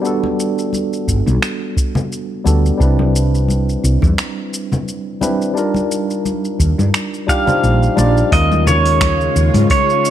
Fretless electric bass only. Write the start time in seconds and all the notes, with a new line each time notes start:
1.08 G1
1.27 B1
2.46 D2
2.80 C2
3.84 C2
4.03 E2
6.59 D#2
6.79 G2
7.63 A#1
7.98 A#1
8.32 D#2
9.36 D#2
9.54 G#2